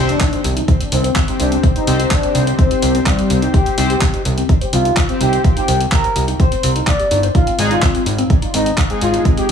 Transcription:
Already playing: C2 C4 G4 C5, impact
0.09 C4 D4, closed hi-hat
0.20 D#4, kick, clap, closed hi-hat
0.33 C5, closed hi-hat
0.44 C2 C4, open hi-hat
0.57 D#4, closed hi-hat
0.68 C5, kick, closed hi-hat
0.81 C4, closed hi-hat
0.92 C2 C4 D#4, open hi-hat
1.04 C5, closed hi-hat
1.16 C4, kick, clap, closed hi-hat
1.28 C4 D#4 G4 C5, closed hi-hat
1.40 C2 D4 C5, open hi-hat
1.52 C4, closed hi-hat
1.63 D#4, kick, closed hi-hat
1.76 D#4 C5, closed hi-hat
1.87 C2 C4 G4 C5, open hi-hat
2.00 D#4, closed hi-hat
2.11 D4 C5, kick, clap, closed hi-hat
2.23 C4, closed hi-hat
2.35 C2 D#4, open hi-hat
2.47 C5, closed hi-hat
2.59 C4, kick, closed hi-hat
2.71 D#4, closed hi-hat
2.82 C2 C5, open hi-hat
2.95 C4, closed hi-hat
3.06 G3, kick, clap, closed hi-hat
3.19 C5, closed hi-hat
3.30 C2 C4, open hi-hat
3.42 D#4, closed hi-hat
3.54 G4 C5, kick, closed hi-hat
3.66 C4, closed hi-hat
3.78 C2 C4 D#4 G4 C5, open hi-hat
3.90 G4 C5, closed hi-hat
4.01 C4, kick, clap, closed hi-hat
4.14 D#4, closed hi-hat
4.25 C2 C5, open hi-hat
4.38 C4, closed hi-hat
4.49 D#4, kick, closed hi-hat
4.61 C5, closed hi-hat
4.73 C2 C4 F4, open hi-hat
4.85 D#4, closed hi-hat
4.97 C5, kick, clap, closed hi-hat
5.09 C4 G4 C5, closed hi-hat
5.21 C2 D#4 G4, open hi-hat
5.33 C5, closed hi-hat
5.44 C4, kick, closed hi-hat
5.57 D#4 G4, closed hi-hat
5.68 C2 C5, open hi-hat
5.80 C4, closed hi-hat
5.92 D#4 A#4, kick, clap, closed hi-hat
6.04 C5, closed hi-hat
6.16 C2 C4, open hi-hat
6.28 D#4, closed hi-hat
6.40 C5, kick, closed hi-hat
6.52 C4, closed hi-hat
6.63 C2 C4, open hi-hat
6.76 D#4, closed hi-hat
6.87 A#3 D5, kick, clap, closed hi-hat
7.00 G4, closed hi-hat
7.11 G1 D#4, open hi-hat
7.23 C5, closed hi-hat
7.35 D#4 F4, kick, closed hi-hat
7.47 C4, closed hi-hat
7.59 G#1 G#3 C4 D#4 G#4, open hi-hat
7.71 D#4 F4, closed hi-hat
7.82 C4, kick, clap, closed hi-hat
7.95 C4, closed hi-hat
8.06 G#1 D#4, open hi-hat
8.18 C4, closed hi-hat
8.30 C4, kick, closed hi-hat
8.42 D#4, closed hi-hat
8.54 G#1 C4 D#4, open hi-hat
8.66 C4, closed hi-hat
8.78 D#4, kick, clap, closed hi-hat
8.90 G#3 C4 D#4 G#4, closed hi-hat
9.01 G#1 C4 F4, open hi-hat
9.14 D#4, closed hi-hat
9.25 C4, kick, closed hi-hat
9.37 C4 G4, closed hi-hat

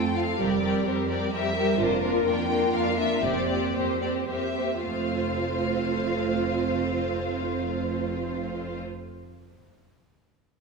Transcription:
Already playing: F2 A3 C4 F4 A4 G5
0.16 A3 C4 F4 A4 F5
0.39 F1 F2 G3 C4 G4 A#4 D5
0.63 G3 C4 G4 A#4
0.85 F2 G3 C4 G4 A#4 C5
1.09 G3 C4 G4 A#4 D5
1.32 F2 G3 C4 G4 A#4 E5
1.56 G3 C4 G4 A#4
1.79 F1 F2 A#3 D4 F4 A#4 C5
2.02 A#3 D4 F4 A#4
2.25 F2 A#3 D4 F4 A#4 G5
2.50 A#3 D4 F4 A#4
2.74 F2 A#3 D4 F4 A#4 F5
2.97 A#3 D4 F4 A#4 E5
3.23 F1 F2 A#3 C4 G4 C5 D5
3.49 A#3 C4 G4 C5
3.74 F2 A#3 C4 G4 C5
4.01 A#3 C4 G4 C5 D5
4.28 F2 A#3 C4 G4 C5 E5
4.55 A#3 C4 G4 C5
4.84 F1 F2 A3 C4 F4 C5 F5

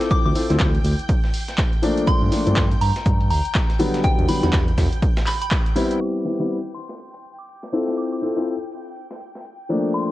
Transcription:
Already playing: C4 E4 F4 A4 G5 G6
0.01 snare, closed hi-hat
0.11 D6, kick, closed hi-hat, shaker
0.25 D2 D6
0.35 C4 E4 F4 A4, open hi-hat, shaker
0.49 D2 C4 E4 F4 A4, snare, closed hi-hat
0.60 D2, kick, snare, clap, closed hi-hat, shaker
0.75 closed hi-hat
0.84 D2, open hi-hat, shaker
0.99 closed hi-hat
1.09 kick, closed hi-hat, shaker
1.24 snare
1.34 open hi-hat, shaker
1.48 snare, closed hi-hat
1.58 kick, snare, clap, closed hi-hat, shaker
1.73 closed hi-hat
1.82 F3 A3 A#3 D4, open hi-hat, shaker
1.97 closed hi-hat
2.07 C6, kick, closed hi-hat, shaker
2.22 G1
2.31 F3 A3 A#3 D4, snare, open hi-hat, shaker
2.46 G1 F3 A3 A#3 D4, closed hi-hat
2.56 G1, kick, snare, clap, closed hi-hat, shaker
2.71 closed hi-hat
2.81 G1 A#5, open hi-hat, shaker
2.96 snare, closed hi-hat
3.06 G1, kick, closed hi-hat, shaker
3.20 closed hi-hat
3.30 D1 A#5, open hi-hat, shaker
3.45 closed hi-hat
3.55 kick, snare, clap, closed hi-hat, shaker
3.69 snare, closed hi-hat
3.79 D3 F#3 G3 B3, open hi-hat, shaker
3.94 snare, closed hi-hat
4.04 G5, kick, closed hi-hat, shaker
4.19 E1, closed hi-hat
4.28 D3 F#3 G3 B3 B5, open hi-hat, shaker
4.43 E1 D3 F#3 G3 B3 B5, snare, closed hi-hat
4.53 E1, kick, snare, clap, closed hi-hat, shaker
4.68 closed hi-hat
4.78 E1, kick, snare, open hi-hat, shaker
4.93 closed hi-hat
5.02 kick, closed hi-hat, shaker
5.17 snare, shaker
5.27 B5, clap, open hi-hat
5.42 B5, closed hi-hat, shaker
5.51 kick, snare, clap, closed hi-hat, shaker
5.66 closed hi-hat
5.76 G3 B3 C4 E4, open hi-hat, shaker
5.91 closed hi-hat
6.01 G5 D6 G6, shaker
6.25 G3 B3 C4 E4, snare, shaker
6.40 G3 B3 C4 E4
6.50 shaker
6.75 C6, shaker
6.89 snare
6.99 shaker
7.14 closed hi-hat
7.24 shaker
7.39 D6
7.48 shaker
7.63 snare
7.72 C4 E4 F4 A4, shaker
7.88 snare
7.97 D6, shaker
8.12 D6
8.22 C4 E4 F4 A4, shaker
8.36 C4 E4 F4 A4, snare, shaker
8.47 shaker
8.62 shaker
8.71 shaker
8.87 shaker
8.96 shaker
9.11 snare, shaker
9.20 shaker
9.35 snare, shaker
9.45 shaker
9.69 F3 A3 A#3 D4, shaker
9.85 shaker
9.94 C6, shaker

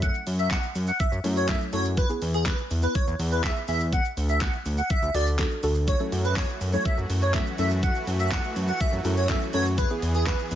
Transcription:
Already playing: F#3 A3 C#4 E4 A4
0.02 F#5, kick, closed hi-hat, shaker
0.14 shaker
0.27 F#2, open hi-hat, shaker
0.39 E5, shaker
0.51 F#5, kick, snare, clap, shaker
0.63 shaker
0.75 F#2, open hi-hat, shaker
0.87 F#5, shaker
1.00 E5, kick, closed hi-hat, shaker
1.12 F#2, shaker
1.24 F#2 F#3 A3 C#4 E4 A4, open hi-hat, shaker
1.36 C#5, shaker
1.48 F#3 A3 C#4 E4 A4 E5, kick, snare, clap, closed hi-hat, shaker
1.61 shaker
1.73 F#2 F#3 A3 C#4 E4 A4 C#5, open hi-hat, shaker
1.85 shaker
1.97 B4, kick, closed hi-hat, shaker
2.09 B3 E4 G#4, shaker
2.22 E2, open hi-hat, shaker
2.34 G#4, shaker
2.46 B4, kick, snare, clap, closed hi-hat, shaker
2.58 shaker
2.71 E2, open hi-hat, shaker
2.82 B3 E4 B4, shaker
2.95 C#5, kick, closed hi-hat, shaker
3.07 E2, shaker
3.19 E2, open hi-hat, shaker
3.32 B4, shaker
3.43 B3 E4 G#4 E5, kick, snare, clap, closed hi-hat, shaker
3.56 shaker
3.68 E2 B3 E4 G#4 E5, open hi-hat, shaker
3.80 shaker
3.93 F#5, kick, closed hi-hat, shaker
4.05 shaker
4.17 D2, open hi-hat, shaker
4.29 E5, shaker
4.41 F#5, kick, snare, clap, closed hi-hat, shaker
4.53 shaker
4.66 D2, open hi-hat, shaker
4.78 F#5, shaker
4.90 E5, kick, closed hi-hat, shaker
5.02 D2, shaker
5.14 D2 D4 F#4 A4 D5, open hi-hat, shaker
5.27 shaker
5.39 D4 F#4 A4, kick, snare, clap, closed hi-hat, shaker
5.51 shaker
5.63 D2 D4 F#4 A4, open hi-hat, shaker
5.75 shaker
5.88 E3 A3 F#4 C#5, kick, closed hi-hat, shaker
6.00 F#3 A3 C#4 E4 A4, shaker
6.12 F#2, open hi-hat, shaker
6.24 B4, shaker
6.36 C#5, kick, snare, clap, closed hi-hat, shaker
6.49 shaker
6.61 F#2, open hi-hat, shaker
6.73 F#3 A3 C#4 E4 A4 C#5, shaker
6.85 E5, kick, closed hi-hat, shaker
6.98 F#2, shaker
7.10 F#2, open hi-hat, shaker
7.22 C#5, shaker
7.34 F#3 A3 C#4 E4 A4 E5, kick, snare, clap, closed hi-hat, shaker
7.47 shaker
7.58 F#2 F#3 A3 C#4 E4 A4 E5, open hi-hat, shaker
7.71 shaker
7.83 F#5, kick, closed hi-hat, shaker
7.95 shaker
8.07 F#2, open hi-hat, shaker
8.20 E5, shaker
8.31 F#5, kick, snare, clap, closed hi-hat, shaker
8.44 shaker
8.56 F#2, open hi-hat, shaker
8.68 F#5, shaker
8.80 E5, kick, closed hi-hat, shaker
8.93 F#2, shaker
9.05 F#2 F#3 A3 C#4 E4 A4, open hi-hat, shaker
9.17 C#5, shaker
9.29 F#3 A3 C#4 E4 A4 E5, kick, snare, clap, closed hi-hat, shaker
9.42 shaker
9.53 F#2 F#3 A3 C#4 E4 A4 C#5, open hi-hat, shaker
9.65 shaker
9.78 B3 G#4 B4, kick, closed hi-hat, shaker
9.90 B3 E4 G#4, shaker
10.02 E2, open hi-hat, shaker
10.14 G#4, shaker
10.26 B4, kick, snare, clap, closed hi-hat, shaker
10.39 shaker
10.51 E2, open hi-hat, shaker

